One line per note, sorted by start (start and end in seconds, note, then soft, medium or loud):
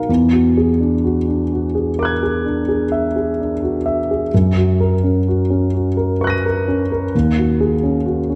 0.00 0.12 D#4 soft
0.00 0.12 F#4 soft
0.00 0.11 A#4 soft
0.00 0.12 F5 soft
0.09 4.28 E2 soft
0.32 0.70 F#4 soft
0.57 0.94 G#4 soft
0.80 1.18 D4 soft
1.04 1.42 F#4 soft
1.28 1.65 D4 soft
1.52 1.89 F#4 soft
1.75 2.12 G#4 soft
1.99 2.22 A#4 soft
1.99 4.29 D6 soft
1.99 4.30 F#6 soft
2.05 4.32 G#6 soft
2.23 2.59 G#4 soft
2.46 2.83 D4 soft
2.68 3.06 G#4 soft
2.92 3.29 E5 soft
3.16 3.53 G#4 soft
3.40 3.77 D4 soft
3.63 4.00 F#4 soft
3.86 4.23 E5 soft
4.11 4.33 G#4 soft
4.34 7.10 F#2 soft
4.58 4.94 F#4 soft
4.80 5.18 A#4 soft
5.04 5.41 C#4 soft
5.28 5.65 F#4 soft
5.50 5.87 C#4 soft
5.74 6.11 F#4 soft
5.97 6.34 A#4 soft
6.21 6.44 B4 soft
6.21 7.10 C#6 soft
6.21 7.12 F#6 soft
6.27 7.13 A#6 soft
6.27 7.15 D#7 soft
6.46 6.82 A#4 soft
6.68 7.05 C#4 soft
6.92 7.14 A#4 soft
7.15 8.35 D#2 soft
7.37 7.74 F#4 soft
7.61 7.97 G#4 soft
7.84 8.20 C#4 soft
8.06 8.35 F#4 soft
8.30 8.35 C#4 soft